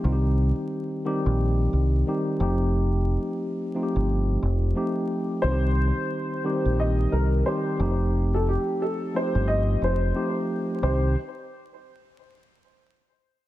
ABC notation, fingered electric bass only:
X:1
M:4/4
L:1/16
Q:"Swing 16ths" 1/4=89
K:Cdor
V:1 name="Fingered electric bass" clef=bass
C,,3 z4 B,,,3 C,,2 z2 F,,,2- | F,,,3 z4 G,,,3 F,,,2 z4 | C,,3 z4 B,,,3 C,,2 z2 F,,,2- | F,,,3 z4 G,,,3 F,,,2 z4 |
C,,2 z12 z2 |]